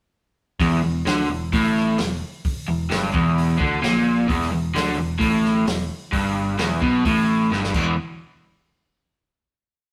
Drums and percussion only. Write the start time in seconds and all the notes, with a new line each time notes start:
0.60 kick, open hi-hat
1.06 snare, open hi-hat
1.53 kick, open hi-hat
1.77 snare
1.98 snare, open hi-hat
2.45 kick, open hi-hat
2.91 snare, open hi-hat
3.14 kick
3.38 open hi-hat
3.60 kick
3.83 snare, open hi-hat
4.29 kick, open hi-hat
4.42 snare
4.76 snare, open hi-hat
5.21 kick, open hi-hat
5.45 snare
5.67 snare, open hi-hat
6.13 kick, open hi-hat
6.59 snare, open hi-hat
6.82 kick
7.05 kick, open hi-hat
7.52 snare
7.64 snare
7.74 kick, crash